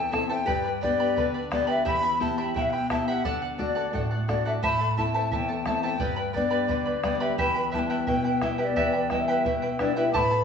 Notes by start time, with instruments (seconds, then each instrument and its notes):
Already playing: nylon-string guitar E2, charango E4 A4 A5, quena G5
0.11 nylon-string guitar C4 E4 A4, charango E4 A4 E5 A5, quena A5, bombo rim, bombo low
0.29 charango E4 A4 C5 E5 A5, quena G5
0.46 nylon-string guitar G2, charango G4 B4 D5 G5 B5, bombo low
0.64 charango B4 D5 B5
0.81 nylon-string guitar B3 D4 G4, charango B4 D5 G5 B5, quena D5, bombo low
1.00 charango G4 B4 D5 G5 B5
1.16 nylon-string guitar D3, charango B4 D5 G5 B5, bombo low
1.34 charango B4 D5 B5
1.51 nylon-string guitar B3 D4 G4, charango B4 D5 G5 B5, quena D5, bombo rim, bombo low
1.67 charango G4 B4 D5 G5 B5, quena E5
1.85 nylon-string guitar E2, charango E4 G4 E5 G5 B5, quena B5, bombo low
2.03 charango E4 E5 B5
2.20 nylon-string guitar B3 E4 G4, charango E4 E5 G5 B5, quena A5, bombo low
2.38 charango E4 G4 E5 G5 B5
2.54 nylon-string guitar B2, charango E4 E5 G5 B5, quena G5, bombo low
2.62 quena E5
2.70 charango E5 B5, quena G5
2.74 charango E4
2.90 nylon-string guitar B3 E4 G4, charango E4 E5 G5 B5, quena A5, bombo rim, bombo low
3.08 charango E4 G4 E5 G5 B5, quena F#5
3.25 nylon-string guitar D3, charango A4 D5 F#5, bombo low
3.42 charango D5 F#5
3.58 nylon-string guitar A3 D4 F#4, charango A4 D5 F#5, quena D5, bombo low
3.75 charango A4 D5 F#5
3.93 nylon-string guitar A2, charango A4 D5 F#5, bombo low
4.11 charango D5 F#5
4.28 nylon-string guitar A3 D4 F#4, charango A4 D5 F#5, quena D5, bombo rim, bombo low
4.45 charango A4 D5 F#5, quena E5
4.63 nylon-string guitar A2, charango E4 A4 C5 E5 A5, quena B5, bombo low
4.80 charango E4 A4 A5
4.97 nylon-string guitar A3 C4 E4, charango E4 A4 E5 A5, quena A5, bombo low
5.14 charango E4 A4 C5 E5 A5
5.31 nylon-string guitar E2, charango E4 A4 E5 A5, quena A5, bombo low
5.36 quena G5
5.48 charango E4 A4 A5
5.65 nylon-string guitar A3 C4 E4, charango E4 A4 E5 A5, quena A5, bombo rim, bombo low
5.83 charango E4 A4 C5 E5 A5, quena G5
5.99 nylon-string guitar G2, charango G4 B4 D5 G5 B5, bombo low
6.16 charango B4 D5 B5
6.33 nylon-string guitar G3 B3 D4, charango B4 D5 G5 B5, quena D5, bombo low
6.50 charango G4 B4 D5 G5 B5
6.68 nylon-string guitar D3, charango B4 D5 G5 B5, bombo low
6.86 charango B4 D5 B5
7.03 nylon-string guitar G3 B3 D4, charango B4 D5 G5 B5, quena D5, bombo rim, bombo low
7.20 charango G4 B4 D5 G5 B5, quena E5
7.38 nylon-string guitar E2, charango E4 G4 B4 E5 G5, quena B5, bombo low
7.55 charango E4 B4 G5
7.71 nylon-string guitar G3 B3 E4, charango E4 B4 E5 G5, quena A5, bombo low
7.79 quena G5
7.87 charango E4 B4 G5, quena A5
7.91 charango G4 E5
8.07 nylon-string guitar B2, charango E4 B4 E5 G5, quena G5, bombo low
8.24 charango E4 B4 G5
8.41 nylon-string guitar G3 B3 E4, charango E4 B4 E5 G5, quena E5, bombo rim, bombo low
8.58 charango E4 G4 B4 E5 G5, quena E5
8.64 quena D5
8.76 nylon-string guitar E2, charango E4 G4 B4 E5 G5, bombo low
8.93 charango E4 B4 G5
9.10 nylon-string guitar G3 B3 E4, charango E4 B4 E5 G5, quena E5, bombo rim, bombo low
9.28 charango E4 G4 B4 E5 G5
9.45 nylon-string guitar B2, charango E4 B4 E5 G5, bombo low
9.62 charango E4 B4 G5
9.78 nylon-string guitar G3 B3 E4, bansuri D4, charango E4 B4 E5 G5, quena D5, bombo rim, bombo low
9.95 bansuri E4, charango E4 G4 B4 E5 G5, quena E5
10.13 nylon-string guitar A2, charango E4 A4 C5 E5 A5, bansuri B4, quena B5 D6, bombo low
10.31 charango E4 A4 A5